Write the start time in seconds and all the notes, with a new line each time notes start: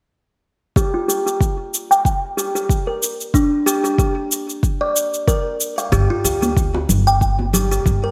0.76 G4, kick, cabasa
0.94 F4
1.08 G4, cabasa
1.26 G4, cabasa
1.41 kick, cabasa
1.74 cabasa
1.91 G5, cabasa
2.05 kick, cabasa
2.37 G4, cabasa
2.55 G4, cabasa
2.69 kick, cabasa
2.87 A#4
3.03 cabasa
3.20 cabasa
3.34 D4, kick, cabasa
3.66 G4, cabasa
3.84 G4, cabasa
3.98 G4, kick, cabasa
4.32 cabasa
4.49 cabasa
4.63 kick, cabasa
4.81 D5
4.96 cabasa
5.14 cabasa
5.28 A#4, kick, cabasa
5.61 cabasa
5.78 F5, cabasa
5.92 G1 G4, kick, cabasa
6.10 F4
6.24 D2 G4, cabasa
6.42 G4, high conga, cabasa
6.57 kick, cabasa
6.74 high bongo
6.89 G1, low conga, cabasa
7.07 G5, cabasa
7.21 kick, cabasa
7.39 high bongo, high conga
7.53 G4, low conga, cabasa
7.71 G4, cabasa
7.86 G1, kick, cabasa
8.04 A#4